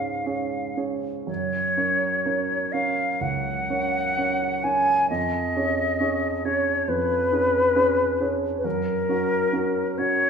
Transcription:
0.00 1.31 G#2 soft
0.00 0.26 C#4 soft
0.00 0.26 G#4 soft
0.00 0.26 C#5 soft
0.00 0.77 F5 medium
0.26 0.73 C#4 soft
0.26 0.73 G#4 soft
0.26 0.73 C#5 soft
0.77 1.24 C#4 soft
0.77 1.24 G#4 soft
0.77 1.24 C#5 soft
1.26 1.75 F#2 soft
1.26 2.73 C#5 medium
1.77 2.22 C#4 soft
1.77 2.22 A#4 soft
1.77 2.22 C#5 soft
2.25 2.69 C#4 soft
2.25 2.69 A#4 soft
2.25 2.70 C#5 soft
2.72 3.17 C#4 soft
2.72 3.17 A#4 soft
2.72 3.17 C#5 soft
2.72 3.22 F5 medium
3.20 3.68 C#2 soft
3.20 4.65 F#5 medium
3.70 4.13 C#4 soft
3.70 4.13 A#4 soft
3.70 4.14 C#5 soft
4.18 4.60 C#4 soft
4.18 4.60 A#4 soft
4.18 4.61 C#5 soft
4.63 5.06 C#4 soft
4.63 5.06 A#4 soft
4.63 5.06 C#5 soft
4.63 5.09 G#5 medium
5.09 5.54 F2 soft
5.09 6.46 D#5 medium
5.56 5.96 C#4 soft
5.56 5.97 G#4 soft
5.56 5.97 C#5 soft
6.00 6.41 C#4 soft
6.00 6.41 G#4 soft
6.00 6.41 C#5 soft
6.45 6.84 C#4 soft
6.45 6.84 G#4 soft
6.45 6.90 C#5 medium
6.45 6.85 C#5 soft
6.88 7.30 F2 soft
6.88 8.34 B4 medium
7.32 7.72 C#4 soft
7.32 7.72 G#4 soft
7.32 7.72 C#5 soft
7.75 8.16 C#4 soft
7.75 8.16 G#4 soft
7.75 8.16 C#5 soft
8.20 8.61 C#4 soft
8.20 8.61 G#4 soft
8.20 8.61 C#5 soft
8.57 8.66 B4 soft
8.64 9.08 F#2 soft
8.64 9.99 A#4 medium
9.09 9.49 C#4 soft
9.09 9.50 F#4 soft
9.09 9.50 A#4 soft
9.52 9.94 C#4 soft
9.52 9.94 F#4 soft
9.52 9.94 A#4 soft
9.97 10.30 C#4 soft
9.97 10.30 F#4 soft
9.97 10.30 A#4 soft
9.97 10.30 C#5 medium

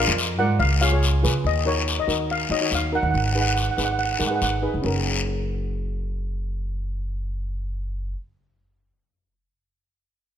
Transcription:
0.00 0.23 F4 medium
0.00 0.24 A#4 medium
0.00 0.23 F5 medium
0.00 0.37 F5 medium
0.08 0.39 F2 medium
0.18 short guiro medium
0.39 0.58 G#2 medium
0.39 0.61 F4 medium
0.39 0.61 A#4 medium
0.39 0.61 D5 medium
0.39 0.48 F#5 medium
0.59 1.26 C#2 loud
0.59 0.69 F5 medium
0.59 long guiro medium
0.81 0.89 F4 medium
0.81 0.89 G#4 medium
0.81 0.89 C#5 medium
0.81 1.21 F5 medium
0.81 short guiro medium
0.92 1.12 F4 medium
0.92 1.12 G#4 medium
0.92 1.12 C#5 medium
1.03 short guiro medium
1.23 1.42 C#3 medium
1.23 1.43 F4 medium
1.23 1.43 G#4 medium
1.23 1.43 B4 medium
1.23 short guiro medium
1.44 1.98 D#2 medium
1.44 1.66 D#5 medium
1.44 long guiro medium
1.65 1.91 D#4 medium
1.65 1.91 F#4 medium
1.65 1.92 A#4 medium
1.65 2.00 C#5 medium
1.88 short guiro medium
2.00 2.31 D#5 medium
2.07 2.44 D#2 medium
2.07 2.34 D#4 medium
2.07 2.33 F#4 medium
2.07 2.34 A#4 medium
2.07 short guiro medium
2.30 2.50 F5 medium
2.30 long guiro medium
2.50 2.68 D#3 medium
2.50 2.57 D#4 medium
2.50 2.57 F#4 medium
2.50 2.58 C#5 medium
2.50 2.73 D#5 medium
2.61 2.80 D#4 medium
2.61 2.80 F#4 medium
2.61 2.81 C#5 medium
2.71 2.99 D#2 medium
2.71 2.95 F5 medium
2.71 short guiro medium
2.92 3.14 D#4 medium
2.92 3.14 F#4 medium
2.92 3.14 A#4 medium
2.92 3.02 F#5 medium
3.03 3.12 D#2 medium
3.03 3.09 F#5 medium
3.11 3.68 G#1 medium
3.11 3.17 F#5 medium
3.15 3.24 F#5 medium
3.15 long guiro medium
3.27 3.32 F#5 medium
3.33 3.61 D#4 medium
3.33 3.61 G#4 medium
3.33 3.61 B4 medium
3.33 3.39 F#5 medium
3.41 3.47 F#5 medium
3.48 3.54 F#5 medium
3.55 3.61 F#5 medium
3.55 short guiro medium
3.63 3.69 F#5 soft
3.71 3.76 F#5 medium
3.77 4.14 G#1 medium
3.77 4.03 D#4 medium
3.77 4.03 G#4 medium
3.77 4.03 B4 medium
3.77 3.84 F#5 soft
3.77 short guiro medium
3.85 3.91 F#5 medium
3.93 3.98 F#5 medium
3.99 4.04 F#5 medium
3.99 long guiro medium
4.05 4.11 F#5 medium
4.12 4.19 F#5 medium
4.19 4.38 G#2 medium
4.19 4.26 D#4 medium
4.19 4.26 G#4 soft
4.19 4.27 A#4 medium
4.19 4.26 F#5 medium
4.19 short guiro medium
4.27 4.50 D#4 medium
4.27 4.50 G#4 medium
4.27 4.50 B4 medium
4.27 4.35 F#5 medium
4.36 4.42 F#5 medium
4.42 4.69 G#1 medium
4.42 4.51 F#5 medium
4.42 short guiro medium
4.62 4.84 D#4 medium
4.62 4.84 G#4 medium
4.62 4.84 B4 medium
4.74 4.83 F1 medium
4.82 8.13 F#1 medium
4.82 8.10 C#4 medium
4.82 8.12 F#4 medium
4.82 long guiro medium
4.86 8.14 A#4 medium

